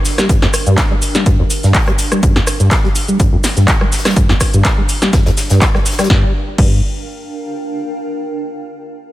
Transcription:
Already playing: D4 A#4 F5 G5
0.05 snare, closed hi-hat, open hi-hat, shaker
0.18 G3, cross-stick, snare, closed hi-hat, shaker
0.29 G2, kick, closed hi-hat, shaker
0.42 F2, snare, closed hi-hat
0.54 cross-stick, closed hi-hat, open hi-hat, shaker
0.67 G2, closed hi-hat, shaker
0.78 kick, snare, clap, closed hi-hat, shaker
0.91 G3
1.02 closed hi-hat, open hi-hat, shaker
1.15 G3, snare, closed hi-hat, shaker
1.26 G2, kick, closed hi-hat, shaker
1.39 F2
1.50 closed hi-hat, open hi-hat, shaker
1.63 G2, snare, closed hi-hat, shaker
1.74 kick, snare, clap, closed hi-hat, open hi-hat, shaker
1.87 G3, cross-stick, closed hi-hat
1.98 closed hi-hat, open hi-hat, shaker
2.12 G3, cross-stick, closed hi-hat, shaker
2.23 G2, kick, closed hi-hat, shaker
2.36 F2, snare, closed hi-hat
2.47 cross-stick, closed hi-hat, open hi-hat, shaker
2.60 G2, closed hi-hat, shaker
2.71 kick, snare, clap, closed hi-hat, shaker
2.84 G3, snare
2.95 closed hi-hat, open hi-hat, shaker
3.08 G3, closed hi-hat, shaker
3.20 G2, kick, closed hi-hat, shaker
3.33 F2
3.44 snare, closed hi-hat, open hi-hat, shaker
3.57 G2, snare, closed hi-hat, shaker
3.68 kick, snare, clap, closed hi-hat, shaker
3.81 G3, cross-stick
3.92 snare, closed hi-hat, open hi-hat, shaker
3.98 snare, closed hi-hat
4.05 G3, cross-stick, snare, closed hi-hat, shaker
4.10 snare, closed hi-hat
4.16 G2, kick, closed hi-hat, shaker
4.29 F2, snare, closed hi-hat
4.40 kick, cross-stick, closed hi-hat, open hi-hat, shaker
4.54 G2, closed hi-hat, shaker
4.65 kick, snare, clap, closed hi-hat, shaker
4.78 G3
4.89 closed hi-hat, open hi-hat, shaker
5.02 G3, snare, closed hi-hat, shaker
5.13 G2, kick, snare, closed hi-hat, shaker
5.26 F2, snare, closed hi-hat
5.37 snare, closed hi-hat, open hi-hat, shaker
5.50 G2, snare, closed hi-hat, shaker
5.62 kick, snare, clap, closed hi-hat, shaker
5.75 G3, cross-stick, snare
5.85 snare, closed hi-hat, open hi-hat, shaker
5.92 snare, closed hi-hat
5.99 G3, cross-stick, snare, closed hi-hat, shaker
6.04 snare, closed hi-hat
6.10 G2 D4, kick, snare
6.18 A#4
6.25 F5
6.32 G5
6.58 G2, kick, crash

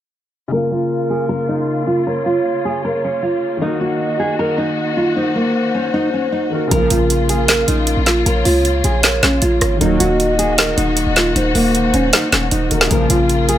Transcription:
0.48 C#3 A#4
0.52 C#3 A#3 F4 A#4
0.57 F4
0.72 F4
1.10 G#4
1.29 A#4
1.49 D#4
1.87 F4
2.07 A#4 C#5
2.26 F4
2.65 G#4
2.85 A#4
3.04 C#4
3.23 F4
3.57 D#3
3.61 D#3 A#3 D#4 F#4 D#5
3.66 F#4
3.81 F#4
4.19 G#4
4.39 A#4
4.58 D#4
4.97 F4
5.16 D#4 C5
5.36 A#3
5.75 C#4
5.94 D#4
6.14 C#4
6.32 D#4
6.50 D#3 A#3 A#4
6.54 F#4
6.67 A#1 C#2 A#2 C#3 F3 A#3 F4 A#4, closed hi-hat
6.71 A#3 A#4
6.76 F4
6.90 A#1 F4, closed hi-hat
7.10 closed hi-hat
7.29 G#4, closed hi-hat
7.48 A#4, snare, closed hi-hat
7.68 A#1 D#4, closed hi-hat
7.87 closed hi-hat
7.97 A#1
8.06 F4, snare, closed hi-hat
8.26 A#1 A#4 C#5, closed hi-hat
8.45 C#2 F4, open hi-hat
8.65 closed hi-hat
8.84 A#1 G#4, closed hi-hat
9.03 A#4, snare, closed hi-hat
9.23 A#1 C#4, snare, closed hi-hat
9.42 A#1 F4, closed hi-hat
9.61 G#1, cross-stick, closed hi-hat
9.76 D#3
9.81 D#1 D#2 A#2 D#3 F#3 A#3 D#4 F#4 D#5, closed hi-hat
9.85 F#4
10.00 D#1 F#4, closed hi-hat
10.20 closed hi-hat
10.39 G#4, closed hi-hat
10.58 A#4, snare, closed hi-hat
10.77 D#1 D#4, closed hi-hat
10.97 closed hi-hat
11.07 D#1
11.16 F4, snare, closed hi-hat
11.36 D#1 D#4 C5, closed hi-hat
11.55 D#1 A#3, open hi-hat
11.75 closed hi-hat
11.94 D#1 C#4, closed hi-hat
12.13 D#4, snare, closed hi-hat
12.32 D#1 C#4, snare, closed hi-hat
12.51 D#1 D#4, closed hi-hat
12.69 D#1 D#3 A#3 A#4, closed hi-hat
12.74 F#4
12.81 snare
12.87 C#3 F4 A#4
12.91 A#1 C#2 A#2 F3 A#3 A#4, closed hi-hat
12.95 F4
13.10 A#1 F4, closed hi-hat
13.29 closed hi-hat
13.49 G#4, closed hi-hat

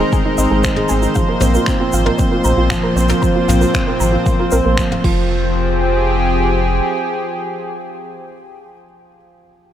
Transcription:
Already playing: D#3 G#3 C4 D#4 A#4 C5
0.00 G#3
0.12 C4 G#5, kick, shaker
0.25 D#4
0.38 G#1 C4 D#5, shaker
0.51 G#1 G#3 G#4
0.64 D#3 C5, finger snap, kick, shaker
0.76 G#3 G#4, mid tom
0.89 G#1 C4 G#5, shaker
1.02 D#4, shaker
1.15 A#2 F3 F5, kick, shaker
1.28 A#3 A#4
1.41 A#1 C4 C5, mid tom, shaker
1.54 F4 A#4, shaker
1.66 C4 A#5, finger snap, kick, shaker
1.74 F3
1.80 C4 F4
1.93 G#1 F3 F5, shaker
2.06 A#3 A#4, mid tom
2.18 C4 C5, kick, shaker
2.31 F4 A#4
2.44 A#1 C4 A#5, shaker
2.57 A#1 A#3 F4
2.70 F3 F5, finger snap, kick, shaker
2.83 A#3 A#4
2.96 A#1 C4 C5, shaker
3.09 F4 A#4, mid tom, shaker
3.22 F3 A#5, kick, shaker
3.36 A#3 F4
3.48 A#1 C4 F5, mid tom, shaker
3.61 F4 A#4, shaker
3.74 C4 C5, finger snap, kick, shaker
3.87 C4 A#4
4.00 G#1 F3 A#5, shaker
4.12 A#3 F4
4.26 C4 F5, kick, shaker
4.39 F4 A#4
4.51 A#1 C4 A#4, shaker
4.65 A#1 A#3 A#4
4.77 F3, finger snap, kick, shaker
4.92 A#3 F5, mid tom
5.04 F1 F3 F4, kick, crash
5.12 C4
5.46 G4
5.53 G#4

